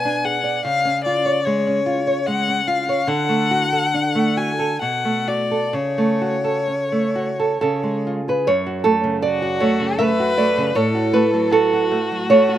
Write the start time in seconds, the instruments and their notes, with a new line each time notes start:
Already playing: nylon-string guitar B2 B3, violin G#5
0.05 nylon-string guitar D4
0.25 nylon-string guitar G#4, violin F#5
0.44 nylon-string guitar D5
0.65 nylon-string guitar C#3, violin F5
0.85 nylon-string guitar C#4
1.04 nylon-string guitar F4, violin D5
1.25 nylon-string guitar C#5
1.45 nylon-string guitar G#3, violin C#5
1.67 nylon-string guitar C#4
1.86 nylon-string guitar F4
2.07 nylon-string guitar C#5
2.27 nylon-string guitar G#3, violin F#5
2.48 nylon-string guitar C#4
2.67 nylon-string guitar F4, violin F5
2.89 nylon-string guitar C#5
3.07 nylon-string guitar D3, violin F#5
3.29 nylon-string guitar A3
3.51 nylon-string guitar F#4
3.73 nylon-string guitar A4
3.94 nylon-string guitar D4
4.15 nylon-string guitar A3
4.37 nylon-string guitar F#4, violin G#5
4.59 nylon-string guitar A4
4.81 nylon-string guitar B2, violin F#5
5.05 nylon-string guitar A3
5.28 nylon-string guitar F#4, violin D5
5.51 nylon-string guitar A4
5.73 nylon-string guitar C#3, violin C#5
5.98 nylon-string guitar A3
6.21 nylon-string guitar F#4
6.44 nylon-string guitar A4
6.67 nylon-string guitar C#4
6.92 nylon-string guitar A3
7.16 nylon-string guitar F#4
7.40 nylon-string guitar A4
7.61 nylon-string guitar C#3 A4
7.83 nylon-string guitar G#3
8.07 nylon-string guitar F4
8.28 nylon-string guitar G#4 B4
8.47 nylon-string guitar F#2 C#5
8.66 nylon-string guitar F#4
8.84 nylon-string guitar A3 A4
9.04 nylon-string guitar C#3
9.22 violin F#4, nylon-string guitar D5
9.42 nylon-string guitar F#4
9.60 nylon-string guitar A3 C#5
9.80 nylon-string guitar C#3
9.99 nylon-string guitar A3 E5, violin B4
10.20 nylon-string guitar F#4
10.37 nylon-string guitar A3 D5
10.58 nylon-string guitar C#3
10.75 nylon-string guitar A2 C#5, violin A4
10.95 nylon-string guitar F#4
11.13 nylon-string guitar A3 B4
11.34 nylon-string guitar F#3
11.52 violin F#4, nylon-string guitar A4
11.73 nylon-string guitar F#4
11.91 nylon-string guitar A3
12.12 nylon-string guitar F#3
12.30 nylon-string guitar A3 C#5
12.49 nylon-string guitar F#4